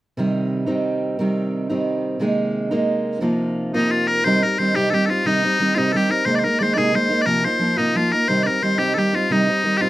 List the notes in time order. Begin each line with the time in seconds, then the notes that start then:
0.17 C3 D#3 G3 C4 D#4
0.66 C3 D#3 G3 C4 D#4
1.19 C3 D#3 G3 C4 D#4
1.70 C3 D#3 G3 C4 D#4
2.19 C3 D#3 G#3 A#3 D#4
2.71 C3 D#3 G#3 A#3 D#4
3.20 C3 F3 A#3 D#4 F4
3.74 C3 F3 A#3 D#4 F4
3.91 F4
4.07 A#4
4.24 C3 D#3 G3 C4 D#4 C5
4.43 G3 C4 D#4 A#4
4.59 D#3 G3 C4 D#4 C5
4.74 C3 D#3 G3 C4 D#4 G4
4.90 D#3 G3 C4 G4 A4
4.95 D#4
5.06 D#4 A4
5.10 G3 C4 F4
5.25 C3 D#3 G3 C4 D#4
5.43 G3 C4 D#4
5.60 D#3 G3 C4 D#4
5.75 C3 D#3 G3 C4 D#4 F4
5.92 D#3 G3 C4 D#4 A4
5.96 G4
6.09 G3 C4 D#4 A#4
6.25 C3 D#3 G#3 A#3 D#4 C5
6.35 C5 D5
6.44 G#3 A#3 D#4 A#4
6.59 D#3 G#3 A#3 D#4 C5 D5
6.74 D#3 G#3 A#3 D#4 D5
6.78 C3 G#4
6.93 D#3 G#3 A#3 D#4 C5
7.09 G#3 A#3 D#4
7.22 D5
7.26 C3 F3 A#3 D#4 F4 A#4
7.44 A#3 D#4 F4 C5
7.59 F3 A#3 D#4 F4
7.77 C3 F3 A#3 D#4 F4
7.95 F3 A#3 D#4 F4
8.11 A#3 D#4 F4 A#4
8.28 C3 D#3 G3 C4 D#4 C5
8.43 D#4 A#4 D5
8.48 G3 C4
8.62 D#3 G3 C4 D#4 C5
8.78 C3 D#3 G3 C4 D#4 G4
8.94 D#3 G3 A4
8.98 C4 D#4 G4
9.13 G3 C4 D#4 F4
9.30 C3 D#3 G3 C4 D#4
9.46 G3 C4 D#4
9.64 D#3 G3 C4 D#4
9.77 D#4 F4 G4
9.82 C3 D#3 G3 C4